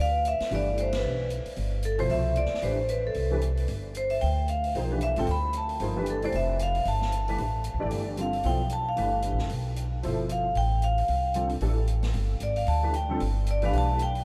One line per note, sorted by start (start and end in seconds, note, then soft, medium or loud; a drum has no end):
0.00 0.37 D2 medium
0.00 0.24 F5 loud
0.25 0.51 E5 loud
0.25 closed hi-hat soft
0.40 muted upright bass stroke soft
0.40 snare soft
0.40 open hi-hat soft
0.51 1.01 G1 medium
0.51 1.24 E3 medium
0.51 1.24 A3 soft
0.51 1.24 D4 soft
0.51 1.24 G4 medium
0.51 1.25 B4 medium
0.51 open hi-hat soft
0.55 0.80 D5 medium
0.78 0.95 C5 medium
0.78 closed hi-hat soft
0.93 snare medium
0.93 ride medium
0.97 1.30 B4 medium
1.04 1.43 B1 medium
1.30 closed hi-hat soft
1.46 muted upright bass stroke soft
1.46 open hi-hat soft
1.56 2.07 G1 medium
1.56 open hi-hat soft
1.83 1.99 A4 medium
1.83 closed hi-hat soft
1.98 2.34 B2 medium
1.98 2.34 F3 medium
1.98 2.34 E4 medium
1.98 2.34 A4 medium
1.98 2.34 C5 medium
1.98 2.09 C5 medium
1.98 open hi-hat soft
2.10 2.49 C2 medium
2.10 2.38 E5 medium
2.10 open hi-hat soft
2.36 2.64 D5 medium
2.36 closed hi-hat soft
2.46 snare soft
2.54 snare soft
2.61 3.13 A1 medium
2.61 2.76 E3 medium
2.61 2.77 A3 soft
2.61 2.77 D4 medium
2.61 2.77 G4 medium
2.61 2.77 B4 medium
2.61 2.88 C5 medium
2.61 open hi-hat soft
2.89 3.06 B4 medium
2.89 closed hi-hat soft
3.07 3.41 A4 medium
3.14 3.66 C2 medium
3.14 open hi-hat soft
3.30 3.41 E3 medium
3.30 3.41 A3 medium
3.30 3.41 D4 soft
3.30 3.41 G4 medium
3.30 3.41 B4 medium
3.42 closed hi-hat soft
3.57 open hi-hat soft
3.68 4.19 G1 medium
3.68 open hi-hat soft
3.95 4.12 C5 medium
3.95 closed hi-hat soft
4.10 4.22 E5 medium
4.10 open hi-hat soft
4.21 4.72 D2 medium
4.21 4.46 G5 medium
4.21 open hi-hat soft
4.48 4.73 F5 medium
4.48 closed hi-hat soft
4.64 open hi-hat soft
4.75 5.14 B1 medium
4.75 4.89 F3 medium
4.75 4.89 A#3 soft
4.75 4.89 D#4 medium
4.75 4.89 G#4 soft
4.75 4.89 C5 medium
4.75 open hi-hat soft
4.90 5.14 E3 medium
4.90 5.14 A3 soft
4.90 5.14 D4 medium
4.90 5.14 G4 medium
4.90 5.14 B4 medium
5.01 5.18 E5 medium
5.01 closed hi-hat soft
5.16 5.27 G#1 medium
5.16 5.26 D3 medium
5.16 5.26 G3 medium
5.16 5.27 C4 medium
5.16 5.27 F4 medium
5.16 5.27 A4 medium
5.16 5.29 G5 medium
5.16 open hi-hat soft
5.27 5.78 D2 medium
5.27 open hi-hat soft
5.31 5.54 B5 loud
5.53 closed hi-hat soft
5.57 5.80 A5 medium
5.69 open hi-hat soft
5.80 6.30 G1 medium
5.80 5.94 F3 medium
5.80 5.95 A#3 medium
5.80 5.95 D#4 soft
5.80 5.95 G#4 medium
5.80 5.95 C5 medium
5.80 open hi-hat soft
5.96 6.19 E3 medium
5.96 6.19 A3 medium
5.96 6.19 D4 medium
5.96 6.20 G4 medium
5.96 6.20 B4 medium
6.06 closed hi-hat medium
6.10 6.23 A4 medium
6.22 6.32 E3 medium
6.22 6.32 A3 medium
6.22 6.32 D4 medium
6.22 6.33 G4 medium
6.22 6.34 C5 medium
6.22 6.33 D5 medium
6.22 open hi-hat soft
6.32 6.83 F1 medium
6.32 6.59 E5 medium
6.32 open hi-hat soft
6.59 6.86 F5 medium
6.59 closed hi-hat medium
6.75 open hi-hat soft
6.85 7.36 G1 medium
6.85 7.62 A5 medium
6.85 open hi-hat soft
7.02 snare soft
7.12 closed hi-hat soft
7.28 7.38 E3 medium
7.28 7.38 A3 medium
7.28 7.38 D4 medium
7.28 7.38 G4 medium
7.28 7.38 B4 medium
7.28 open hi-hat soft
7.38 7.71 A1 medium
7.38 open hi-hat soft
7.64 closed hi-hat soft
7.74 7.82 C2 medium
7.79 7.91 A1 medium
7.79 8.15 E3 medium
7.79 8.15 A3 medium
7.79 8.15 D4 medium
7.79 8.15 G4 medium
7.79 8.15 D5 medium
7.91 8.42 G1 medium
7.91 open hi-hat soft
8.17 8.32 D3 medium
8.17 8.32 G3 soft
8.17 8.32 C4 soft
8.17 8.32 F4 soft
8.17 8.32 A4 medium
8.17 8.47 F5 medium
8.17 closed hi-hat soft
8.33 open hi-hat soft
8.43 8.94 B1 medium
8.43 8.58 F3 medium
8.43 8.58 B3 soft
8.43 8.58 E4 soft
8.43 8.59 A4 medium
8.43 8.59 C5 medium
8.43 8.72 G5 medium
8.43 open hi-hat soft
8.70 8.86 A5 medium
8.70 closed hi-hat soft
8.89 9.37 F5 medium
8.96 9.30 G1 medium
8.96 9.36 E3 medium
8.96 9.36 A3 medium
8.96 9.36 D4 medium
8.96 9.36 G4 soft
8.96 9.36 B4 medium
8.96 open hi-hat soft
9.22 closed hi-hat soft
9.32 9.41 A1 medium
9.39 9.50 F#1 medium
9.39 snare soft
9.50 10.01 B1 medium
9.50 open hi-hat soft
9.76 closed hi-hat medium
10.02 10.54 G1 medium
10.02 10.42 B2 medium
10.02 10.42 F3 medium
10.02 10.42 E4 medium
10.02 10.42 A4 medium
10.02 10.42 C5 medium
10.02 open hi-hat soft
10.29 10.58 F5 medium
10.29 closed hi-hat soft
10.55 11.06 A1 medium
10.55 10.84 G5 loud
10.55 open hi-hat soft
10.82 10.97 F5 medium
10.82 closed hi-hat soft
10.98 11.47 F5 medium
10.98 open hi-hat soft
11.08 11.59 C2 medium
11.08 open hi-hat soft
11.34 11.49 D3 medium
11.34 11.49 G3 soft
11.34 11.49 C4 medium
11.34 11.49 F4 soft
11.34 11.49 A4 medium
11.34 closed hi-hat soft
11.49 open hi-hat soft
11.61 12.12 A1 medium
11.61 11.75 E3 medium
11.61 11.75 A3 medium
11.61 11.76 D4 medium
11.61 11.76 G4 medium
11.61 11.76 A4 medium
11.61 open hi-hat soft
11.87 closed hi-hat soft
12.03 snare medium
12.03 open hi-hat soft
12.14 12.39 G1 medium
12.14 open hi-hat soft
12.40 12.65 G#1 medium
12.40 12.57 D5 medium
12.40 closed hi-hat medium
12.56 12.68 F5 medium
12.56 open hi-hat soft
12.67 13.17 D2 medium
12.67 12.92 A5 loud
12.67 open hi-hat soft
12.83 12.93 E3 medium
12.83 12.92 A3 medium
12.83 12.93 D4 medium
12.83 12.93 G4 medium
12.83 12.93 B4 medium
12.94 13.19 G5 medium
12.94 closed hi-hat soft
13.08 13.18 D3 medium
13.08 13.19 G3 medium
13.08 13.19 C4 medium
13.08 13.19 F4 medium
13.08 13.19 A4 medium
13.20 13.71 G1 medium
13.20 open hi-hat soft
13.47 closed hi-hat soft
13.51 13.63 D5 medium
13.62 13.97 E3 medium
13.62 13.97 A3 medium
13.62 13.97 D4 medium
13.62 13.97 G4 medium
13.62 13.98 B4 medium
13.62 13.75 F5 medium
13.62 open hi-hat soft
13.73 14.23 B1 medium
13.73 open hi-hat soft
13.78 14.00 A5 loud
13.99 14.24 G5 medium
13.99 closed hi-hat medium
14.15 open hi-hat soft